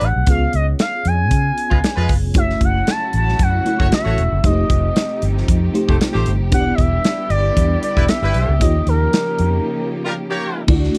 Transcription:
Already playing: fm electric piano A3 D4 F#4 G4 B4
0.01 fingered electric bass A1, analog synth lead F#5, closed hi-hat
0.16 fingered electric bass B1
0.27 fingered electric bass C#2, fm electric piano B3 C#4 F4 G#4 C#5, analog synth lead F5, kick, closed hi-hat
0.53 fingered electric bass C#2, analog synth lead D#5, closed hi-hat
0.79 analog synth lead F5, snare, closed hi-hat
1.05 fingered electric bass F2, analog synth lead G#5, closed hi-hat
1.31 fingered electric bass C#3, kick, closed hi-hat
1.58 closed hi-hat
1.70 fingered electric bass C#2, horn section G#3 F4 B4, kick
1.84 snare, closed hi-hat
1.96 fingered electric bass F2, horn section G#3 F4 B4
2.09 fingered electric bass F#1, kick, open hi-hat
2.23 fingered electric bass F1
2.34 fingered electric bass F#1, string section C#3 F#3 A3 E4 F#4, fm electric piano G#3 C#4 E4 F#4 C#5, analog synth lead E5, kick, closed hi-hat
2.40 fm electric piano A3
2.50 snare
2.61 fingered electric bass F#1, analog synth lead F#5, kick, closed hi-hat
2.87 analog synth lead A5, snare, closed hi-hat
3.13 fingered electric bass A1, analog synth lead A5, closed hi-hat
3.29 snare
3.39 fingered electric bass F#2, analog synth lead F#5, kick, closed hi-hat
3.65 fm electric piano A3 C#4 E4 F#4 C#5, closed hi-hat
3.79 fingered electric bass F#1, horn section A3 F#4 C#5, kick
3.92 analog synth lead E5, snare, closed hi-hat
4.05 fingered electric bass A1, horn section A3 F#4 C#5
4.18 fingered electric bass E1, closed hi-hat
4.32 fingered electric bass F#1
4.43 fingered electric bass F1, string section C3 F3 D#4 G4, fm electric piano G#3 D#4 F4 G4 C5, analog synth lead D#5, kick, closed hi-hat
4.49 fm electric piano A3
4.70 fingered electric bass F1, kick, closed hi-hat
4.96 snare, closed hi-hat
5.22 fingered electric bass G1, closed hi-hat
5.38 snare
5.48 fingered electric bass F2, kick, closed hi-hat
5.73 fm electric piano A3 D#4 F4 G4 C5, closed hi-hat
5.88 fingered electric bass F1, horn section A3 G4 C5, kick
6.01 snare, closed hi-hat
6.13 fingered electric bass A1, horn section A3 G4 C5
6.26 fingered electric bass G1, closed hi-hat
6.41 fingered electric bass F1
6.51 fingered electric bass E1, string section D3 G3 B3 E4, fm electric piano B3 D4 E4 G4 C#5, analog synth lead F#5, kick, closed hi-hat
6.60 fm electric piano D5
6.75 fingered electric bass E1, analog synth lead D#5, kick, closed hi-hat
6.80 analog synth lead E5
7.04 snare, closed hi-hat
7.30 fingered electric bass G1, analog synth lead D5, closed hi-hat
7.57 fingered electric bass E2, kick, closed hi-hat
7.83 analog synth lead D5, closed hi-hat
7.96 fingered electric bass E1, horn section G3 E4 B4, kick
8.08 analog synth lead E5, snare, closed hi-hat
8.22 fingered electric bass G1, horn section G3 E4 B4
8.34 fingered electric bass B1, closed hi-hat
8.49 fingered electric bass C#2
8.59 fingered electric bass D#2, string section C#3 F3 A#3 D#4, fm electric piano A#3 D#4 F4 G4 C#5, analog synth lead D#5, kick, closed hi-hat
8.87 fingered electric bass D#2, analog synth lead A#4, closed hi-hat
9.13 snare, closed hi-hat
9.39 fingered electric bass F2, closed hi-hat
10.04 horn section G3 F4 A#4
10.30 horn section A#3 G4 C#5
10.67 fingered electric bass D2, string section D3 E3 A3 F#4, fm electric piano A3 D4 E4 F4 D5, kick, crash
10.75 fm electric piano F#4
10.84 snare
10.95 closed hi-hat

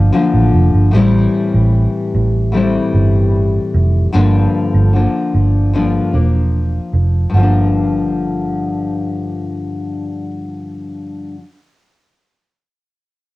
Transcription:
Already playing: nylon-string guitar D3 F3 A#3 D4
0.12 nylon-string guitar D3 F3 A#3 D4
0.34 fingered electric bass A1
0.54 fingered electric bass F1
0.74 fingered electric bass G1
0.91 fingered electric bass A1, nylon-string guitar A2 E3 G3
0.96 nylon-string guitar C4 E4
1.54 fingered electric bass A1
2.15 fingered electric bass A1
2.52 nylon-string guitar A2 E3 G3
2.56 nylon-string guitar C4 E4
2.94 fingered electric bass G1
3.74 fingered electric bass F1
4.12 fingered electric bass G1, nylon-string guitar G2 D3 F3 A#3 D4
4.74 fingered electric bass G1
4.93 nylon-string guitar D3 F3 A#3 D4
5.34 fingered electric bass G1
5.73 nylon-string guitar G2 D3 F3 A#3 D4
6.13 fingered electric bass E1, nylon-string guitar F3 A#3 D4
6.93 fingered electric bass F1
7.30 nylon-string guitar G2
7.34 fingered electric bass G1, nylon-string guitar D3 F3
7.40 nylon-string guitar A#3 D4

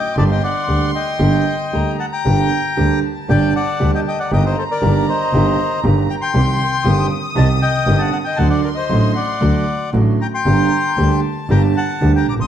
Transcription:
Already playing: bandoneon D#5 G5, violin section D6
0.16 double bass G1, grand piano G1 G2 D3 G3 A#3 G4, bandoneon D5 A5, violin section C6
0.31 bandoneon D#5 G5
0.44 bandoneon D5 F#5
0.68 double bass D2, grand piano D2 D3 G3 A#3 G4
0.95 bandoneon D#5 G5
1.19 grand piano G1 G2 D3 G3 A#3 G4, double bass G1
1.72 grand piano D2 D3 G3 A#3 G4, double bass D2, violin section A#5
2.00 bandoneon F#5 A5
2.12 bandoneon G5 A#5
2.25 grand piano G1 G2 D3 G3 A#3 G4, double bass G1, violin section G5
2.77 grand piano D2 D3 G3 A#3 G4, double bass D2, violin section A5
3.28 grand piano G1 G2 D3 G3 A#3 G4, double bass G1, bandoneon D5 G5
3.56 bandoneon D5 F#5
3.80 grand piano D2 D3 G3 A#3 G4, double bass D2
3.95 bandoneon D#5 G5
4.08 bandoneon D#5 G5
4.20 bandoneon D5 F#5
4.31 grand piano G1 G2 D#3 G3 A#3 G4, double bass G1, bandoneon D#5 G5, violin section A#5
4.46 bandoneon C5 D#5
4.58 bandoneon A4 C5
4.71 bandoneon A#4 D5
4.81 grand piano G1 G2 D#3 G3 A#3 G4, double bass G1
5.09 bandoneon C5 D#5
5.33 double bass G1, grand piano G1 G2 D#3 G3 A#3 G4
5.84 double bass G1, grand piano G1 G2 D#3 G3 A#3 G4
6.09 bandoneon G5 A#5
6.21 bandoneon G5 C6
6.34 double bass C2, grand piano C2 C3 D#3 G3 C4 G4, violin section C6
6.85 double bass G1, grand piano G1 G2 D#3 G3 C4 G4, violin section D#6
7.36 double bass C2, grand piano C2 C3 D#3 G3 C4 G4, bandoneon D#5 A5
7.62 bandoneon D#5 G5
7.86 double bass G1, grand piano G1 G2 D#3 G3 C4 G4
7.99 bandoneon F#5 A5
8.11 bandoneon F#5 A5
8.25 bandoneon D#5 G5
8.36 double bass D2, grand piano D2 D3 F#3 A3 F#4, bandoneon F#5 A5, violin section C6
8.49 bandoneon D5 F#5
8.62 bandoneon A#4 D5
8.75 bandoneon C5 D#5
8.89 grand piano A1 A2 D3 F#3 A3 F#4, double bass A1
9.15 bandoneon D5 F#5
9.41 grand piano D2 D3 F#3 A3 F#4, double bass D2
9.93 double bass A1, grand piano A1 A2 D3 F#3 A3 F#4
10.21 bandoneon G5 A#5
10.34 bandoneon G5 C6
10.45 double bass G1, grand piano G1 G2 D3 G3 A#3 G4, violin section A#5
10.97 double bass D2, grand piano D2 D3 G3 A#3 G4, violin section A5
11.49 double bass G1, grand piano G1 G2 D3 G3 A#3 G4, bandoneon G5 A#5
11.77 bandoneon F#5 A5
12.01 double bass D2, grand piano D2 D3 G3 A#3 G4
12.16 bandoneon G5 A#5
12.27 double bass A#1, bandoneon A#5 D6
12.34 grand piano A1
12.39 grand piano A#1, bandoneon C6 D#6

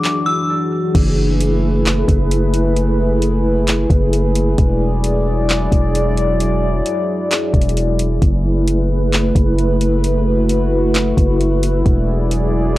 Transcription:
Already playing: ambient pad F#3 D4 F#4 G#4, harp A3 D4 E4 F#4, synth bell D6
0.04 harp E3, clap
0.26 harp E4, synth bell E6
0.50 harp D4
0.95 808-style bass F#1, ambient pad A3 E4 G#4 B4, kick, closed hi-hat, crash
1.40 closed hi-hat
1.86 clap, closed hi-hat
2.08 808-style bass F#1, kick, closed hi-hat
2.31 closed hi-hat
2.54 closed hi-hat
2.77 closed hi-hat
3.22 closed hi-hat
3.67 clap, closed hi-hat
3.90 808-style bass F#1, kick, closed hi-hat
4.13 closed hi-hat
4.36 closed hi-hat
4.58 808-style bass E1, ambient pad F#3 E4 D5, kick, closed hi-hat
5.04 closed hi-hat
5.49 clap, closed hi-hat
5.72 808-style bass E1, kick, closed hi-hat
5.95 closed hi-hat
6.17 closed hi-hat
6.40 closed hi-hat
6.86 closed hi-hat
7.31 clap, closed hi-hat
7.54 808-style bass E1, kick, closed hi-hat
7.61 closed hi-hat
7.69 closed hi-hat
7.77 closed hi-hat
7.99 closed hi-hat
8.22 808-style bass F#1, ambient pad A3 B4, kick, closed hi-hat
8.67 closed hi-hat
9.13 clap, closed hi-hat
9.35 808-style bass F#1, kick, closed hi-hat
9.59 closed hi-hat
9.81 closed hi-hat
10.04 ambient pad F#4, closed hi-hat
10.49 closed hi-hat
10.95 clap, closed hi-hat
11.17 808-style bass F#1, kick, closed hi-hat
11.41 closed hi-hat
11.63 closed hi-hat
11.86 808-style bass E1, ambient pad F#3 G#4 D5, kick, closed hi-hat
12.31 closed hi-hat

